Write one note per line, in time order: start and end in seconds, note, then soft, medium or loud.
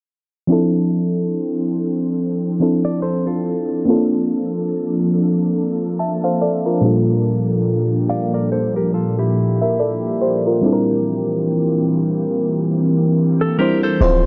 0.47 2.55 F3 medium
0.47 10.59 F3 medium
0.47 2.56 C4 medium
0.47 3.84 C4 medium
0.47 10.59 D4 medium
0.47 2.57 D4 medium
0.47 2.57 E4 medium
0.47 6.79 A4 medium
0.52 2.58 A4 medium
2.60 3.87 F3 soft
2.60 3.85 C4 soft
2.60 3.87 D4 soft
2.60 3.88 E4 soft
2.60 3.88 A4 medium
2.85 3.02 D5 medium
3.02 3.25 A4 medium
3.02 3.26 C5 medium
3.27 3.84 F4 medium
3.27 3.84 A4 medium
3.85 6.78 A#3 medium
3.85 10.59 A#3 medium
3.85 6.79 C4 medium
3.85 3.95 C#4 soft
3.85 5.95 F4 medium
3.90 5.96 A4 medium
3.94 6.82 D4 medium
5.99 6.22 E5 medium
5.99 6.22 A5 medium
6.24 6.40 C5 medium
6.24 6.40 F5 medium
6.42 6.65 A4 medium
6.42 6.64 D5 medium
6.66 6.84 F4 soft
6.66 7.06 A#4 medium
6.81 10.16 A#2 medium
6.81 10.59 A#2 medium
6.81 10.16 G3 medium
6.81 10.17 A#3 medium
6.81 10.17 D4 medium
6.81 9.33 F4 medium
6.81 13.97 G4 medium
6.86 9.34 A4 medium
8.10 8.33 D5 medium
8.10 8.33 F5 medium
8.34 8.51 A#4 medium
8.34 8.51 D5 medium
8.52 8.75 A4 medium
8.52 8.75 C5 medium
8.76 8.93 G4 medium
8.76 8.93 A#4 medium
8.94 9.18 F4 medium
8.94 9.17 A4 medium
9.19 10.42 E4 medium
9.19 10.41 G4 medium
9.62 9.78 A#4 soft
9.62 9.78 E5 medium
9.79 10.19 A4 medium
9.79 10.19 D5 medium
10.22 10.45 G4 medium
10.22 10.44 C5 medium
10.46 10.86 F4 soft
10.46 10.72 A#4 medium
10.61 13.97 E3 medium
10.61 13.54 G3 medium
10.61 13.97 A#3 medium
10.61 13.55 C4 medium
10.61 13.98 C4 medium
10.61 13.55 D4 medium
10.61 13.56 E4 medium
10.66 10.72 A4 medium
10.73 13.60 A#4 medium
13.41 13.58 A4 medium
13.59 14.01 G3 medium
13.59 14.01 C4 soft
13.59 14.02 D4 medium
13.59 14.02 E4 soft
13.59 13.82 G4 medium
13.59 13.82 A#4 medium
13.59 14.00 C5 medium
13.83 14.24 A4 medium
13.83 14.23 C5 medium
14.00 14.26 D1 medium
14.00 14.26 F3 medium
14.00 14.26 A3 medium
14.00 14.26 C4 medium
14.00 14.26 E4 medium
14.00 14.26 F4 medium
14.00 14.26 C5 loud
14.00 14.26 D5 medium
14.00 14.26 A5 medium
14.00 14.26 C6 medium